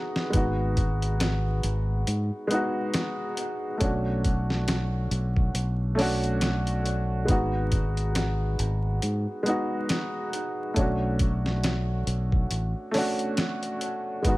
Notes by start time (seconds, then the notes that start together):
Already playing: G#3 B3 D#4 F#4
0.16 snare
0.30 G#1 G#3 B3, kick, closed hi-hat
0.35 D#4 F#4
0.77 kick, closed hi-hat
1.02 closed hi-hat
1.20 snare, closed hi-hat
1.63 G#1, closed hi-hat
2.07 G#2, closed hi-hat
2.47 G#3 B3, closed hi-hat
2.52 D#4 F#4
2.94 snare, closed hi-hat
3.37 closed hi-hat
3.78 B1 A3 C#4, kick, closed hi-hat
3.82 D4 F#4
4.24 kick, closed hi-hat
4.50 snare
4.68 snare, closed hi-hat
5.11 B1, closed hi-hat
5.36 kick
5.54 B1, closed hi-hat
5.95 A3 C#4, open hi-hat
5.99 D4 F#4, snare
6.24 closed hi-hat
6.41 snare, closed hi-hat
6.67 closed hi-hat
6.86 closed hi-hat
7.25 G#1 G#3 B3, kick, closed hi-hat
7.29 D#4 F#4
7.72 kick, closed hi-hat
7.97 closed hi-hat
8.15 snare, closed hi-hat
8.59 G#1, closed hi-hat
9.02 G#2, closed hi-hat
9.43 G#3 B3, closed hi-hat
9.48 D#4 F#4
9.89 snare, closed hi-hat
10.33 closed hi-hat
10.74 B1 A3 C#4, kick, closed hi-hat
10.79 D4 F#4
11.19 kick, closed hi-hat
11.46 snare
11.64 snare, closed hi-hat
12.07 B1, closed hi-hat
12.32 kick
12.50 A1, closed hi-hat
12.91 A3 C#4, snare, open hi-hat
12.96 D4 F#4
13.19 closed hi-hat
13.37 snare, closed hi-hat
13.63 closed hi-hat
13.81 closed hi-hat
14.22 G#1 G#3 B3, kick, closed hi-hat
14.27 D#4 F#4